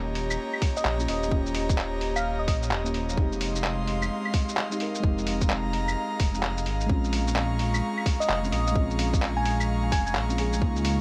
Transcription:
0.00 0.37 D#1 medium
0.00 0.95 A#3 medium
0.00 0.96 C#4 medium
0.00 0.97 F4 medium
0.00 0.99 G4 loud
0.00 3.14 G4 medium
0.00 3.14 C#5 medium
0.00 6.86 D#5 medium
0.00 3.14 A#5 medium
0.15 open hi-hat medium
0.30 claves medium
0.30 shaker medium
0.53 claves medium
0.62 kick loud
0.62 open hi-hat medium
0.76 0.82 D#5 medium
0.76 shaker medium
0.85 1.07 A#1 loud
0.85 0.95 D#5 medium
0.85 clap loud
0.98 1.05 A#3 medium
0.98 1.06 C#4 medium
0.98 1.07 F4 medium
0.98 shaker soft
1.02 1.07 G4 medium
1.07 1.30 D#1 medium
1.07 1.27 A#3 medium
1.07 1.29 C#4 medium
1.07 1.30 F4 medium
1.07 1.33 D#5 medium
1.07 open hi-hat medium
1.11 1.31 C5 medium
1.23 shaker medium
1.28 2.49 D#1 medium
1.28 2.81 A#3 medium
1.28 2.82 C#4 medium
1.28 kick loud
1.33 2.84 F4 medium
1.33 2.85 G4 loud
1.46 shaker soft
1.55 open hi-hat medium
1.69 kick loud
1.69 shaker medium
1.78 clap loud
2.01 open hi-hat medium
2.16 2.36 F5 loud
2.16 claves medium
2.16 shaker medium
2.39 2.45 D#5 medium
2.48 2.73 A#1 medium
2.48 2.57 D#5 medium
2.48 kick loud
2.48 open hi-hat medium
2.63 shaker medium
2.71 3.16 D#1 loud
2.71 clap loud
2.84 2.91 A#3 medium
2.84 2.92 C#4 medium
2.84 2.93 F4 medium
2.84 2.93 G4 medium
2.84 shaker soft
2.92 3.15 A#3 medium
2.92 3.15 C#4 medium
2.92 3.16 F4 medium
2.92 open hi-hat medium
2.97 3.17 C5 medium
3.09 shaker medium
3.13 4.67 G#3 medium
3.13 4.68 C4 medium
3.17 4.09 F1 medium
3.17 11.01 G#3 medium
3.17 4.69 D#4 medium
3.17 4.71 G4 loud
3.17 11.01 F5 medium
3.17 5.02 C6 medium
3.17 kick loud
3.32 shaker soft
3.41 open hi-hat medium
3.55 shaker medium
3.64 clap loud
3.88 open hi-hat medium
4.02 claves medium
4.02 shaker medium
4.25 claves medium
4.34 kick loud
4.34 open hi-hat medium
4.49 shaker medium
4.57 clap loud
4.69 4.77 G#3 medium
4.69 4.78 C4 medium
4.69 4.79 D#4 medium
4.69 4.79 G4 medium
4.69 shaker soft
4.78 4.98 G#3 medium
4.78 5.01 C4 medium
4.78 5.02 D#4 medium
4.78 5.02 A#4 medium
4.78 open hi-hat medium
4.95 shaker medium
5.00 5.95 F1 loud
5.00 6.30 G#3 loud
5.00 6.31 C4 medium
5.00 kick loud
5.04 6.32 D#4 medium
5.04 6.34 G4 loud
5.04 6.88 A#5 medium
5.18 shaker soft
5.27 open hi-hat medium
5.41 kick loud
5.41 shaker medium
5.50 clap loud
5.73 open hi-hat medium
5.88 claves medium
5.88 shaker medium
6.20 6.68 F1 loud
6.20 kick loud
6.20 open hi-hat medium
6.31 6.85 G#3 medium
6.31 6.87 C4 medium
6.31 shaker medium
6.36 6.88 D#4 medium
6.36 6.90 G4 medium
6.43 clap loud
6.57 shaker soft
6.66 6.88 G#1 medium
6.66 open hi-hat medium
6.81 shaker medium
6.86 7.82 A#1 loud
6.86 8.39 G#3 loud
6.86 8.40 C4 medium
6.86 kick loud
6.90 8.42 C#4 medium
6.90 8.43 F4 loud
6.90 11.01 A#5 medium
6.90 11.01 C#6 medium
7.04 shaker soft
7.13 open hi-hat medium
7.27 shaker medium
7.36 clap loud
7.59 open hi-hat medium
7.74 claves medium
7.74 shaker medium
7.97 claves medium
8.06 kick loud
8.06 open hi-hat medium
8.20 8.26 D#5 medium
8.20 shaker medium
8.29 8.51 F1 loud
8.29 8.38 D#5 medium
8.29 clap loud
8.42 8.49 G#3 medium
8.42 8.50 C4 medium
8.42 8.51 C#4 medium
8.42 shaker soft
8.46 8.51 F4 medium
8.50 8.74 A#1 medium
8.50 8.70 G#3 medium
8.50 8.73 C4 medium
8.50 8.74 C#4 medium
8.50 8.77 D#5 medium
8.50 open hi-hat medium
8.54 8.75 G#4 medium
8.67 shaker medium
8.72 9.93 A#1 medium
8.72 10.25 G#3 loud
8.72 10.26 C4 medium
8.72 kick loud
8.77 10.28 C#4 medium
8.77 10.29 F4 loud
8.90 shaker soft
8.99 open hi-hat medium
9.14 kick loud
9.14 shaker medium
9.22 clap loud
9.37 9.61 G#5 loud
9.45 open hi-hat medium
9.60 claves medium
9.60 shaker medium
9.92 10.17 F1 medium
9.92 10.01 G#5 medium
9.92 kick loud
9.92 open hi-hat medium
10.07 10.12 G#5 medium
10.07 shaker soft
10.15 10.61 A#1 medium
10.15 clap loud
10.28 10.35 G#3 medium
10.28 10.36 C4 medium
10.28 10.37 C#4 medium
10.28 shaker soft
10.32 10.37 F4 medium
10.36 10.56 G#3 medium
10.36 10.59 C4 medium
10.36 10.60 C#4 medium
10.36 open hi-hat medium
10.40 10.61 G#4 medium
10.53 shaker medium
10.57 11.01 G#3 loud
10.57 11.01 A#3 medium
10.62 11.01 C#2 loud
10.62 11.01 D#4 medium
10.62 11.01 F4 loud
10.62 kick loud
10.76 shaker soft
10.85 open hi-hat medium

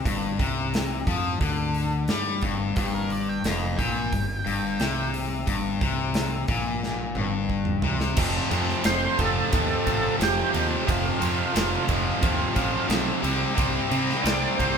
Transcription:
0.05 0.37 G1 medium
0.05 0.38 G2 loud
0.05 kick medium
0.05 open hi-hat medium
0.39 1.03 C2 medium
0.39 1.06 C3 loud
0.39 kick medium
0.39 open hi-hat soft
0.74 snare loud
0.74 open hi-hat medium
1.07 1.38 F2 medium
1.07 1.40 F3 loud
1.07 kick medium
1.07 open hi-hat soft
1.41 2.04 D2 medium
1.41 2.08 D3 medium
1.41 kick medium
1.41 open hi-hat medium
1.74 open hi-hat soft
2.08 2.40 G2 medium
2.08 2.42 G3 medium
2.08 snare medium
2.08 open hi-hat medium
2.41 2.74 G1 medium
2.41 2.76 G2 loud
2.41 kick medium
2.41 open hi-hat soft
2.76 3.40 G1 medium
2.76 3.43 G2 loud
2.76 2.94 G4 medium
2.76 kick loud
2.76 open hi-hat medium
2.94 3.10 A#4 medium
3.10 3.28 D5 medium
3.10 open hi-hat soft
3.29 3.44 G5 medium
3.44 3.75 F1 medium
3.44 3.77 F2 medium
3.44 3.78 A#5 medium
3.44 snare loud
3.44 open hi-hat medium
3.78 4.10 A#1 medium
3.78 4.11 A#2 loud
3.78 5.09 G5 medium
3.78 kick medium
3.78 open hi-hat soft
4.12 4.44 G1 medium
4.12 4.39 G2 medium
4.12 kick medium
4.12 open hi-hat medium
4.46 4.77 G1 medium
4.46 4.79 G2 medium
4.46 open hi-hat soft
4.80 5.43 C2 medium
4.80 5.46 C3 loud
4.80 snare loud
4.80 open hi-hat medium
5.14 open hi-hat medium
5.46 5.79 G1 medium
5.46 5.79 G2 loud
5.46 kick medium
5.46 open hi-hat medium
5.81 6.45 C2 medium
5.81 6.48 C3 loud
5.81 kick medium
5.81 open hi-hat soft
6.14 snare loud
6.14 open hi-hat medium
6.48 7.12 A#1 loud
6.48 7.15 A#2 loud
6.48 kick medium
6.48 open hi-hat soft
6.83 snare soft
7.15 7.79 G1 medium
7.15 7.83 G2 medium
7.15 mid tom medium
7.50 kick medium
7.65 mid tom medium
7.82 8.14 C2 medium
7.82 8.16 C3 loud
7.82 floor tom medium
8.00 snare medium
8.17 8.38 F1 loud
8.17 8.50 F2 medium
8.17 8.50 C3 loud
8.17 8.51 F3 loud
8.17 10.85 C4 medium
8.17 10.85 F4 medium
8.17 10.86 A4 medium
8.17 kick loud
8.17 crash loud
8.51 8.83 F2 medium
8.51 8.72 F2 medium
8.51 8.83 C3 medium
8.51 8.85 F3 medium
8.51 ride medium
8.69 snare soft
8.84 9.06 F1 medium
8.84 9.17 F2 medium
8.84 9.18 C3 medium
8.84 9.19 F3 loud
8.84 9.20 C5 loud
8.84 snare loud
8.84 ride loud
9.18 9.39 F1 medium
9.18 9.50 F2 medium
9.18 9.52 C3 medium
9.18 9.52 F3 medium
9.18 10.16 A4 loud
9.18 kick medium
9.18 ride medium
9.52 9.74 D#2 medium
9.52 9.85 F2 medium
9.52 9.85 C3 medium
9.52 9.86 F3 loud
9.52 kick loud
9.52 ride medium
9.86 10.07 A1 medium
9.86 10.17 F2 medium
9.86 10.18 C3 medium
9.86 10.19 F3 loud
9.86 kick medium
9.86 ride medium
10.18 10.40 F1 medium
10.18 10.51 F2 medium
10.18 10.52 C3 medium
10.18 10.52 F3 medium
10.18 snare loud
10.18 ride medium
10.23 10.91 G4 medium
10.52 10.75 D#2 medium
10.52 10.85 F2 medium
10.52 10.85 C3 loud
10.52 10.86 F3 loud
10.52 ride medium
10.86 11.09 F1 loud
10.86 11.17 F2 medium
10.86 11.18 C3 medium
10.86 11.19 F3 loud
10.86 13.22 F4 medium
10.86 12.87 F4 medium
10.86 13.22 A4 medium
10.86 13.22 C5 medium
10.86 kick loud
10.86 ride medium
11.18 11.52 F2 medium
11.18 11.42 F2 medium
11.18 11.53 C3 medium
11.18 11.54 F3 medium
11.18 ride medium
11.53 11.76 F1 medium
11.53 11.85 F2 medium
11.53 11.86 C3 medium
11.53 11.87 F3 loud
11.53 snare loud
11.53 ride loud
11.86 12.09 F1 medium
11.86 12.19 F2 medium
11.86 12.20 C3 medium
11.86 12.20 F3 medium
11.86 kick medium
11.86 ride medium
12.20 12.44 D#2 medium
12.20 12.53 F2 loud
12.20 12.53 C3 loud
12.20 12.55 F3 loud
12.20 kick loud
12.20 ride medium
12.54 12.77 A1 medium
12.54 12.86 F2 medium
12.54 12.87 C3 medium
12.54 12.87 F3 medium
12.54 kick medium
12.54 ride medium
12.88 13.10 B1 medium
12.88 13.20 F2 medium
12.88 13.21 C3 medium
12.88 13.21 F3 medium
12.88 snare loud
12.88 ride medium
13.22 13.44 C2 medium
13.22 13.54 C3 loud
13.22 13.56 G3 loud
13.22 13.56 C4 loud
13.22 14.78 C4 medium
13.22 14.78 D#4 medium
13.22 14.78 G4 medium
13.22 ride medium
13.55 13.79 C2 medium
13.55 13.90 C3 medium
13.55 13.90 G3 medium
13.55 13.91 C4 medium
13.55 kick loud
13.55 ride medium
13.90 14.24 C3 medium
13.90 14.12 C3 medium
13.90 14.24 G3 medium
13.90 14.25 C4 loud
13.90 ride medium
14.09 snare soft
14.22 14.45 C2 medium
14.22 14.58 C3 medium
14.22 14.59 G3 medium
14.22 14.59 C4 medium
14.22 14.58 D5 loud
14.22 ride medium
14.27 snare loud
14.57 14.78 C2 medium
14.57 14.78 C3 medium
14.57 14.78 G3 medium
14.57 14.78 C4 loud
14.57 14.78 C5 loud
14.57 kick medium
14.57 ride medium

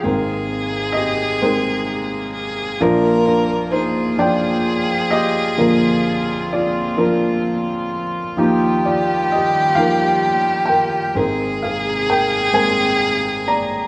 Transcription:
0.00 1.22 G#3 medium
0.00 0.93 G#4 medium
0.00 2.33 G#4 loud
0.00 0.99 F5 loud
0.04 2.77 G#1 medium
0.04 2.77 G#2 soft
0.04 2.79 C3 medium
0.04 2.79 G#3 medium
0.04 5.55 A#3 medium
0.04 1.22 C4 medium
0.04 1.22 A#4 medium
0.92 1.39 G4 medium
0.92 1.42 D#5 medium
1.42 2.61 G#3 medium
1.42 2.61 C4 medium
1.42 2.44 D#4 medium
1.42 2.61 A#4 medium
1.42 2.42 C5 medium
2.33 2.84 G#4 medium
2.80 5.54 A#1 medium
2.80 5.54 A#2 medium
2.80 8.34 F3 medium
2.80 3.99 F3 medium
2.80 3.26 D4 medium
2.80 11.12 F4 medium
2.80 3.24 A#4 medium
2.80 3.73 A#4 loud
3.25 3.70 D4 medium
3.25 3.74 A#4 medium
3.72 4.16 D#4 medium
3.72 7.87 G#4 loud
3.72 4.15 C5 medium
4.18 5.37 F3 medium
4.18 5.37 D4 medium
4.18 5.08 F4 medium
4.18 5.14 D5 medium
4.18 5.37 G5 medium
5.11 6.47 G4 medium
5.11 6.54 D#5 loud
5.57 8.34 A#1 medium
5.57 8.34 A#2 medium
5.57 6.77 D3 medium
5.57 6.77 F3 medium
5.57 8.35 C4 medium
5.57 6.77 A#4 medium
6.53 6.96 F4 medium
6.53 7.00 D5 medium
6.97 8.17 F3 medium
6.97 6.99 D4 medium
6.97 8.00 D4 medium
6.97 8.17 A#4 medium
8.37 11.13 D#2 medium
8.37 11.14 D#3 medium
8.37 9.57 F3 medium
8.37 11.14 G3 medium
8.37 9.58 D#4 medium
8.37 11.18 G4 loud
8.37 9.34 G4 medium
8.85 9.30 F4 medium
8.85 9.33 D5 medium
9.32 9.75 D#5 medium
9.36 9.76 G4 medium
9.75 10.96 F3 medium
9.75 10.96 D#4 medium
9.75 10.96 G4 medium
9.75 10.67 A#4 medium
9.75 10.72 F5 medium
10.66 11.13 A#4 medium
10.66 11.11 G5 medium
11.15 13.87 G#1 medium
11.15 13.87 G#2 medium
11.15 13.87 C3 medium
11.15 12.34 G#3 medium
11.15 13.87 A#3 medium
11.15 12.34 C4 medium
11.15 13.87 G#4 medium
11.15 13.87 G#4 loud
11.15 12.08 A#4 medium
11.62 12.07 G#4 medium
11.62 12.06 F5 medium
12.09 12.52 A#4 medium
12.09 12.57 G5 medium
12.53 13.72 G#3 medium
12.53 13.72 C4 medium
12.53 13.72 A#4 medium
12.53 13.42 C5 medium
12.53 13.43 G#5 medium
13.48 13.87 D5 medium
13.48 13.87 A#5 medium

